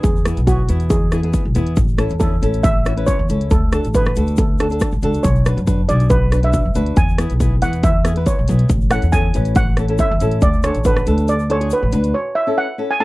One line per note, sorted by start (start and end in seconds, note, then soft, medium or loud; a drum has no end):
0.03 0.32 E2 medium
0.03 0.44 G#4 medium
0.03 kick loud
0.03 closed hi-hat medium
0.03 shaker medium
0.16 shaker soft
0.25 0.39 B3 medium
0.25 0.39 E4 medium
0.25 0.40 G#4 medium
0.25 cross-stick medium
0.25 closed hi-hat medium
0.25 shaker medium
0.37 0.64 B1 medium
0.37 closed hi-hat medium
0.37 shaker soft
0.47 0.61 B3 medium
0.47 0.61 E4 medium
0.47 0.92 F#4 medium
0.47 0.61 G#4 medium
0.47 kick medium
0.47 closed hi-hat medium
0.47 shaker medium
0.69 1.33 E2 medium
0.69 0.95 B3 medium
0.69 0.95 E4 medium
0.69 0.96 G#4 medium
0.69 closed hi-hat medium
0.69 shaker medium
0.80 closed hi-hat medium
0.80 shaker soft
0.90 1.31 G#4 medium
0.90 kick loud
0.90 closed hi-hat medium
0.90 shaker medium
1.12 1.19 B3 medium
1.12 1.20 E4 medium
1.12 1.20 G#4 medium
1.12 cross-stick medium
1.12 closed hi-hat medium
1.12 shaker medium
1.23 1.43 B3 medium
1.23 1.43 E4 medium
1.23 1.43 G#4 medium
1.23 closed hi-hat medium
1.33 kick medium
1.33 closed hi-hat medium
1.33 shaker medium
1.45 1.54 B1 medium
1.55 1.74 E2 medium
1.55 1.77 B3 medium
1.55 1.77 E4 medium
1.55 1.78 G#4 medium
1.55 closed hi-hat medium
1.55 shaker medium
1.67 closed hi-hat medium
1.76 2.05 A1 medium
1.76 kick loud
1.76 closed hi-hat medium
1.76 shaker medium
1.88 shaker soft
1.98 2.12 C#4 medium
1.98 2.12 E4 medium
1.98 2.12 A4 medium
1.98 cross-stick medium
1.98 closed hi-hat medium
1.98 shaker medium
2.09 2.37 E2 medium
2.09 closed hi-hat medium
2.09 shaker soft
2.20 2.34 C#4 medium
2.20 2.34 E4 medium
2.20 2.35 G#4 medium
2.20 2.65 A4 medium
2.20 kick medium
2.20 closed hi-hat medium
2.20 shaker medium
2.42 3.07 A1 medium
2.42 2.69 C#4 medium
2.42 2.69 E4 medium
2.42 2.69 A4 medium
2.42 closed hi-hat medium
2.42 shaker medium
2.53 closed hi-hat medium
2.53 shaker soft
2.63 3.04 E5 medium
2.63 kick loud
2.63 closed hi-hat medium
2.63 shaker medium
2.85 2.93 C#4 medium
2.85 2.93 E4 medium
2.85 2.93 F#4 medium
2.85 cross-stick medium
2.85 closed hi-hat medium
2.85 shaker medium
2.97 3.17 C#4 medium
2.97 3.17 E4 medium
2.97 3.17 B4 medium
2.97 closed hi-hat medium
3.07 3.52 C#5 medium
3.07 kick medium
3.07 closed hi-hat medium
3.07 shaker medium
3.19 3.28 E2 medium
3.29 3.48 C#2 medium
3.29 3.51 C#4 medium
3.29 3.51 E4 medium
3.29 3.51 A4 medium
3.29 closed hi-hat medium
3.29 shaker medium
3.41 closed hi-hat medium
3.51 3.79 D2 medium
3.51 3.96 A4 medium
3.51 kick loud
3.51 closed hi-hat medium
3.51 shaker medium
3.72 3.86 D4 medium
3.72 3.86 F#4 medium
3.72 3.86 A4 medium
3.72 cross-stick medium
3.72 closed hi-hat medium
3.72 shaker medium
3.84 4.11 A1 medium
3.84 closed hi-hat medium
3.84 shaker soft
3.94 4.08 D4 medium
3.94 4.08 F#4 medium
3.94 4.08 G#4 medium
3.94 4.40 B4 medium
3.94 kick medium
3.94 closed hi-hat medium
3.94 shaker medium
4.05 cross-stick medium
4.05 shaker soft
4.16 4.80 D2 medium
4.16 4.42 D4 medium
4.16 4.43 F#4 medium
4.16 4.43 A4 medium
4.16 closed hi-hat medium
4.16 shaker medium
4.27 closed hi-hat medium
4.27 shaker soft
4.37 4.79 A4 medium
4.37 kick loud
4.37 closed hi-hat medium
4.37 shaker medium
4.58 4.66 D4 medium
4.58 4.66 F#4 medium
4.58 4.67 A4 medium
4.58 cross-stick medium
4.58 closed hi-hat medium
4.58 shaker medium
4.70 4.90 D4 medium
4.70 4.90 F#4 medium
4.70 4.90 A4 medium
4.70 closed hi-hat medium
4.70 shaker soft
4.80 kick medium
4.80 cross-stick medium
4.80 closed hi-hat medium
4.80 shaker loud
4.92 5.01 A1 medium
4.92 shaker soft
5.02 5.21 C#2 medium
5.02 5.25 D4 medium
5.02 5.25 F#4 medium
5.02 5.25 A4 medium
5.02 closed hi-hat medium
5.02 shaker medium
5.13 closed hi-hat medium
5.13 shaker soft
5.23 5.52 B1 medium
5.23 5.91 C#5 medium
5.23 kick loud
5.23 closed hi-hat medium
5.23 shaker medium
5.35 shaker soft
5.46 5.59 D4 medium
5.46 5.59 F#4 medium
5.46 5.60 B4 medium
5.46 cross-stick medium
5.46 closed hi-hat medium
5.46 shaker medium
5.57 5.84 F#2 medium
5.57 closed hi-hat medium
5.57 shaker soft
5.66 5.80 D4 medium
5.66 5.81 F#4 medium
5.66 5.81 B4 medium
5.66 kick medium
5.66 closed hi-hat medium
5.66 shaker medium
5.88 6.53 B1 medium
5.88 6.15 D4 medium
5.88 6.15 F#4 medium
5.88 6.15 G#4 medium
5.88 6.11 D5 medium
5.88 closed hi-hat medium
5.88 shaker medium
6.00 closed hi-hat medium
6.00 shaker soft
6.10 6.44 B4 medium
6.10 kick loud
6.10 closed hi-hat medium
6.10 shaker medium
6.32 6.39 D4 medium
6.32 6.39 F#4 medium
6.32 6.39 B4 medium
6.32 cross-stick medium
6.32 closed hi-hat medium
6.32 shaker medium
6.43 6.63 D4 medium
6.43 6.63 F#4 medium
6.43 6.63 B4 medium
6.43 6.64 E5 medium
6.43 closed hi-hat medium
6.53 kick medium
6.53 closed hi-hat medium
6.53 shaker medium
6.66 6.74 F#2 medium
6.75 6.94 D2 medium
6.75 6.97 D4 medium
6.75 6.97 F#4 medium
6.75 6.97 B4 medium
6.75 closed hi-hat medium
6.75 shaker medium
6.86 closed hi-hat medium
6.96 7.25 E2 medium
6.96 7.64 G#5 medium
6.96 kick loud
6.96 closed hi-hat medium
6.96 shaker medium
7.09 shaker soft
7.18 7.32 B3 medium
7.18 7.32 E4 medium
7.18 7.32 G#4 medium
7.18 cross-stick medium
7.18 closed hi-hat medium
7.18 shaker medium
7.30 7.57 B1 medium
7.30 closed hi-hat medium
7.30 shaker soft
7.40 7.54 B3 medium
7.40 7.54 E4 medium
7.40 7.54 G#4 medium
7.40 kick medium
7.40 closed hi-hat medium
7.40 shaker medium
7.62 8.26 E2 medium
7.62 7.88 B3 medium
7.62 7.88 E4 medium
7.62 7.88 G#4 medium
7.62 7.72 F#5 medium
7.62 closed hi-hat medium
7.62 shaker medium
7.73 closed hi-hat medium
7.73 shaker soft
7.83 8.28 E5 medium
7.83 kick loud
7.83 closed hi-hat medium
7.83 shaker medium
8.05 8.12 B3 medium
8.05 8.12 E4 medium
8.05 8.12 G#4 medium
8.05 cross-stick medium
8.05 closed hi-hat medium
8.05 shaker medium
8.16 8.36 B3 medium
8.16 8.36 E4 medium
8.16 8.36 B4 medium
8.16 closed hi-hat medium
8.26 8.67 C#5 medium
8.26 kick medium
8.26 closed hi-hat medium
8.26 shaker medium
8.39 8.47 B1 medium
8.48 8.67 B1 medium
8.48 8.70 B3 medium
8.48 8.70 E4 medium
8.48 8.70 G#4 medium
8.48 closed hi-hat medium
8.48 shaker medium
8.59 closed hi-hat medium
8.69 8.97 A1 medium
8.69 kick loud
8.69 closed hi-hat medium
8.69 shaker medium
8.81 shaker soft
8.91 9.05 C#4 medium
8.91 9.05 E4 medium
8.91 9.05 A4 medium
8.91 9.14 F#5 medium
8.91 cross-stick medium
8.91 closed hi-hat medium
8.91 shaker medium
9.02 9.29 E2 medium
9.02 closed hi-hat medium
9.02 shaker soft
9.12 9.27 C#4 medium
9.12 9.27 E4 medium
9.12 9.27 A4 medium
9.12 9.57 G#5 medium
9.12 kick medium
9.12 closed hi-hat medium
9.12 shaker medium
9.34 9.98 A1 medium
9.34 9.60 C#4 medium
9.34 9.61 E4 medium
9.34 9.61 B4 medium
9.34 closed hi-hat medium
9.34 shaker medium
9.45 closed hi-hat medium
9.45 shaker soft
9.55 10.00 F#5 loud
9.55 kick loud
9.55 closed hi-hat medium
9.55 shaker medium
9.77 9.85 C#4 medium
9.77 9.85 E4 medium
9.77 9.85 A4 medium
9.77 cross-stick medium
9.77 closed hi-hat medium
9.77 shaker medium
9.88 10.08 C#4 medium
9.88 10.08 E4 medium
9.88 10.08 A4 medium
9.88 closed hi-hat medium
9.98 10.44 E5 medium
9.98 kick medium
9.98 closed hi-hat medium
9.98 shaker medium
10.11 10.19 E2 medium
10.20 10.39 A1 medium
10.20 10.42 C#4 medium
10.20 10.43 E4 medium
10.20 10.43 A4 medium
10.20 closed hi-hat medium
10.20 shaker medium
10.31 closed hi-hat soft
10.42 10.70 D2 medium
10.42 10.64 D5 medium
10.42 kick loud
10.42 closed hi-hat medium
10.42 shaker medium
10.53 shaker soft
10.63 10.77 D4 medium
10.63 10.77 F#4 medium
10.63 10.78 A4 medium
10.63 10.86 C#5 medium
10.63 cross-stick medium
10.63 closed hi-hat medium
10.63 shaker medium
10.75 11.01 A1 medium
10.75 closed hi-hat medium
10.75 shaker soft
10.84 10.99 D4 medium
10.84 10.99 F#4 medium
10.84 10.99 A4 medium
10.84 11.26 B4 medium
10.84 kick medium
10.84 closed hi-hat medium
10.84 shaker medium
10.97 cross-stick medium
10.97 shaker soft
11.06 11.70 D2 medium
11.06 11.32 D4 medium
11.06 11.33 F#4 medium
11.06 11.33 A4 medium
11.06 closed hi-hat medium
11.06 shaker medium
11.18 closed hi-hat medium
11.18 shaker soft
11.28 11.51 D5 medium
11.28 closed hi-hat medium
11.28 shaker medium
11.39 shaker soft
11.50 11.56 D4 medium
11.50 11.57 F#4 medium
11.50 11.57 A4 medium
11.50 11.73 C#5 medium
11.50 closed hi-hat medium
11.60 11.80 D4 medium
11.60 11.80 F#4 medium
11.60 11.80 G#4 medium
11.60 closed hi-hat medium
11.70 11.92 B4 medium
11.70 closed hi-hat medium
11.70 shaker loud
11.83 11.91 A1 medium
11.92 12.11 D2 medium
11.92 12.14 D4 medium
11.92 12.14 F#4 medium
11.92 12.14 B4 medium
11.92 closed hi-hat medium
11.92 shaker medium
12.04 closed hi-hat medium
12.04 shaker soft
12.14 12.34 C#5 medium
12.35 12.45 E5 medium
12.47 12.66 C#4 medium
12.47 12.66 E4 medium
12.47 12.66 A4 medium
12.58 12.91 F#5 loud
12.78 12.92 C#4 medium
12.78 12.92 E4 medium
12.78 12.92 A4 medium
12.91 13.01 G#5 loud
13.00 13.04 C#4 medium
13.00 13.04 E4 medium
13.00 13.04 A4 medium
13.00 13.04 A5 loud